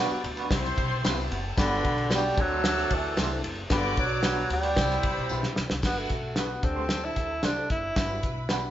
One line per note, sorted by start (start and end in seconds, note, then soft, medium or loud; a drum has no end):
0.00 0.20 G2 medium
0.00 0.21 F#3 loud
0.00 0.23 B3 medium
0.00 0.29 B3 medium
0.00 0.29 D4 medium
0.00 0.20 F#4 medium
0.00 0.23 F#4 medium
0.00 0.29 F#4 medium
0.00 0.29 G4 medium
0.00 0.30 B4 loud
0.00 0.23 D5 medium
0.00 0.23 D5 loud
0.00 0.23 D6 loud
0.10 muted upright bass stroke medium
0.24 0.47 D2 loud
0.24 ride medium
0.37 0.46 B3 medium
0.37 0.45 D4 medium
0.37 0.45 F#4 medium
0.37 0.45 B4 medium
0.37 ride soft
0.51 0.74 C2 loud
0.51 1.27 C3 medium
0.51 0.82 G3 medium
0.51 1.29 G3 medium
0.51 0.82 C4 medium
0.51 1.29 E4 medium
0.51 0.83 E4 medium
0.51 0.83 G4 medium
0.51 1.15 C5 loud
0.51 1.29 C5 loud
0.51 0.83 C5 loud
0.51 1.15 C6 loud
0.51 kick loud
0.51 snare loud
0.51 ride medium
0.51 tambourine medium
0.65 snare soft
0.78 1.00 B1 medium
0.78 kick medium
0.78 ride medium
1.04 1.27 C2 loud
1.04 1.13 G3 medium
1.04 1.36 B3 medium
1.04 1.14 C4 medium
1.04 1.36 C4 medium
1.04 1.14 E4 medium
1.04 1.36 E4 medium
1.04 1.36 G4 medium
1.04 1.36 B4 loud
1.04 1.14 B4 medium
1.04 snare loud
1.04 ride medium
1.04 tambourine loud
1.22 1.31 E4 medium
1.22 1.31 E5 medium
1.30 1.53 F#1 loud
1.30 1.40 F#4 medium
1.30 1.40 F#5 medium
1.30 ride medium
1.41 1.49 G4 medium
1.41 1.49 G5 medium
1.48 1.57 A4 medium
1.48 1.57 A5 loud
1.58 1.80 G1 loud
1.58 2.34 G2 medium
1.58 2.15 D3 loud
1.58 2.10 G3 medium
1.58 1.89 B3 loud
1.58 1.89 D4 medium
1.58 2.07 D4 medium
1.58 2.10 F#4 medium
1.58 1.89 F#4 loud
1.58 1.89 G4 loud
1.58 2.10 B4 medium
1.58 1.89 B4 loud
1.58 2.10 B5 loud
1.58 kick loud
1.58 snare loud
1.58 ride medium
1.58 tambourine loud
1.85 2.30 B1 loud
1.85 kick medium
1.85 ride medium
1.98 ride soft
2.10 2.20 G3 medium
2.10 2.43 G3 loud
2.10 2.37 B3 medium
2.10 2.20 D4 loud
2.10 2.37 D4 medium
2.10 2.20 F#4 loud
2.10 2.38 F#4 medium
2.10 2.38 G4 medium
2.10 2.20 B4 loud
2.10 2.38 B4 medium
2.10 snare loud
2.10 ride medium
2.10 tambourine loud
2.37 2.83 D2 loud
2.37 3.14 D3 medium
2.37 2.96 F#3 loud
2.37 3.42 A3 medium
2.37 3.02 C4 medium
2.37 3.02 D4 medium
2.37 2.92 F#4 medium
2.37 3.42 A4 loud
2.37 3.02 A4 medium
2.37 3.02 C5 medium
2.37 3.42 D5 loud
2.37 3.42 A5 loud
2.37 kick loud
2.37 ride medium
2.50 2.58 A3 medium
2.50 2.58 D4 medium
2.50 2.58 G4 medium
2.50 2.58 C5 medium
2.64 snare loud
2.64 ride medium
2.64 tambourine medium
2.78 snare soft
2.90 3.14 D2 loud
2.90 3.45 E4 medium
2.90 kick medium
2.90 ride medium
2.95 3.46 E3 medium
3.17 3.40 C2 loud
3.17 3.26 A3 medium
3.17 3.49 C4 medium
3.17 3.26 D4 medium
3.17 3.49 D4 medium
3.17 3.27 G4 medium
3.17 3.49 G4 medium
3.17 3.49 A4 medium
3.17 3.27 C5 medium
3.17 3.49 C5 medium
3.17 snare loud
3.17 ride medium
3.17 tambourine medium
3.44 3.66 F#1 medium
3.44 ride medium
3.70 3.93 G1 medium
3.70 4.47 G2 medium
3.70 4.01 D3 loud
3.70 4.49 B3 medium
3.70 4.02 B3 loud
3.70 4.03 D4 loud
3.70 3.96 D4 medium
3.70 4.49 F#4 medium
3.70 4.03 F#4 medium
3.70 4.03 G4 loud
3.70 4.03 B4 loud
3.70 4.49 D5 loud
3.70 4.49 D6 loud
3.70 kick loud
3.70 snare loud
3.70 ride medium
3.70 tambourine medium
3.97 4.43 B1 medium
3.97 4.52 F#3 loud
3.97 4.51 F#4 medium
3.97 kick medium
3.97 ride medium
4.23 4.33 G3 medium
4.23 4.55 B3 medium
4.23 4.33 D4 loud
4.23 4.55 D4 medium
4.23 4.33 F#4 loud
4.23 4.56 F#4 medium
4.23 4.56 G4 medium
4.23 4.56 B4 medium
4.23 4.34 B4 loud
4.23 snare loud
4.23 ride medium
4.23 tambourine medium
4.50 4.73 D2 loud
4.50 5.27 G3 loud
4.50 5.26 G4 medium
4.50 ride medium
4.63 4.71 G3 medium
4.63 4.71 D4 medium
4.63 4.71 F#4 medium
4.63 4.71 B4 medium
4.63 ride soft
4.76 5.00 C2 loud
4.76 5.53 C3 medium
4.76 5.55 G3 medium
4.76 5.09 G3 medium
4.76 5.09 C4 medium
4.76 5.55 E4 medium
4.76 5.09 E4 medium
4.76 5.09 G4 medium
4.76 5.55 C5 loud
4.76 5.55 C5 medium
4.76 5.09 C5 medium
4.76 5.55 B5 loud
4.76 kick loud
4.76 snare loud
4.76 ride medium
4.76 tambourine medium
4.91 snare soft
5.03 muted upright bass stroke soft
5.03 kick medium
5.03 ride medium
5.17 5.28 B1 medium
5.29 5.42 B1 medium
5.29 5.39 G3 medium
5.29 5.40 C4 medium
5.29 5.62 C4 medium
5.29 5.40 E4 medium
5.29 5.62 E4 medium
5.29 5.62 G4 medium
5.29 5.62 B4 medium
5.29 5.40 B4 medium
5.29 5.62 C5 loud
5.29 tambourine loud
5.43 snare medium
5.56 5.68 C2 medium
5.56 snare medium
5.70 5.82 C2 medium
5.70 snare loud
5.82 6.06 G1 medium
5.82 6.60 G2 medium
5.82 6.00 B3 medium
5.82 6.15 D4 medium
5.82 6.36 F#4 medium
5.82 6.16 F#4 medium
5.82 6.15 G4 medium
5.82 6.16 B4 medium
5.82 6.36 F#5 loud
5.82 kick loud
5.82 snare loud
5.82 crash loud
5.82 tambourine medium
5.99 6.40 A3 medium
6.10 6.56 B1 medium
6.10 kick medium
6.10 closed hi-hat medium
6.36 6.46 B3 medium
6.36 6.66 B3 medium
6.36 6.46 D4 medium
6.36 6.63 D4 medium
6.36 6.47 F#4 loud
6.36 6.64 F#4 medium
6.36 6.63 G4 medium
6.36 6.64 B4 medium
6.36 6.47 B4 medium
6.36 snare loud
6.36 closed hi-hat loud
6.36 tambourine medium
6.63 7.09 D2 loud
6.63 7.40 D3 medium
6.63 7.06 C4 loud
6.63 7.28 D4 medium
6.63 7.28 G4 medium
6.63 7.68 A4 medium
6.63 7.28 A4 medium
6.63 7.28 C5 medium
6.63 7.68 A5 loud
6.63 kick loud
6.63 closed hi-hat medium
6.76 6.85 A3 soft
6.76 6.84 D4 soft
6.76 6.84 G4 soft
6.76 6.84 C5 medium
6.89 snare loud
6.89 closed hi-hat medium
6.89 tambourine medium
7.05 7.46 E4 loud
7.16 7.39 D2 medium
7.16 kick medium
7.16 closed hi-hat medium
7.43 7.66 C2 medium
7.43 7.52 A3 medium
7.43 7.53 D4 medium
7.43 7.75 D4 medium
7.43 7.71 D4 loud
7.43 7.75 G4 medium
7.43 7.53 G4 medium
7.43 7.75 A4 medium
7.43 7.53 C5 medium
7.43 7.76 C5 medium
7.43 snare loud
7.43 closed hi-hat medium
7.43 tambourine medium
7.70 7.93 F#1 loud
7.70 8.47 E4 loud
7.70 kick medium
7.70 closed hi-hat medium
7.96 8.19 G1 medium
7.96 8.71 G2 medium
7.96 8.29 D4 medium
7.96 8.29 F#4 medium
7.96 8.29 G4 medium
7.96 8.71 B4 medium
7.96 8.29 B4 medium
7.96 8.71 B5 loud
7.96 kick loud
7.96 snare loud
7.96 closed hi-hat loud
7.96 tambourine medium
8.23 8.69 B1 medium
8.23 kick medium
8.23 closed hi-hat medium
8.49 8.59 B3 medium
8.49 8.71 D4 medium
8.49 8.60 D4 medium
8.49 8.71 F#4 medium
8.49 8.60 F#4 medium
8.49 8.71 G4 medium
8.49 8.71 B4 loud
8.49 8.60 B4 medium
8.49 snare loud
8.49 closed hi-hat medium
8.49 tambourine medium